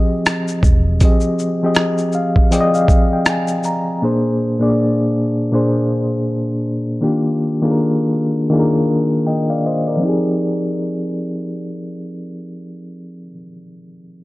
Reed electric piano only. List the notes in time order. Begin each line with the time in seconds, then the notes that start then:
Already playing: F3 C4 G4 G#4 D#5
1.02 F3 C4 G4 G#4 D#5
1.63 F3 C4 G4 G#4 D#5
2.15 F5
2.51 F3 C4 G#4 D5 D#5 G5
2.60 D#5
2.75 F5
3.13 G5
3.30 G#5
3.65 A#5
4.02 A#2 A#3 D4 G#4 C5
4.60 A#2 A#3 D4 G#4 D5
5.52 A#2 A#3 D4 G#4 C5
7.01 D#3 A#3 D4 F4 G4
7.62 D#3 A#3 D4 F4 G#4
7.71 A#4
8.50 D#3 A#3 D4 F4 G#4
8.59 A#4
9.26 D#5 G5
9.50 D5 F5
9.66 C5 D#5
9.87 A#4 D5
9.97 F3 C4
10.03 D#4 G4
10.09 G#4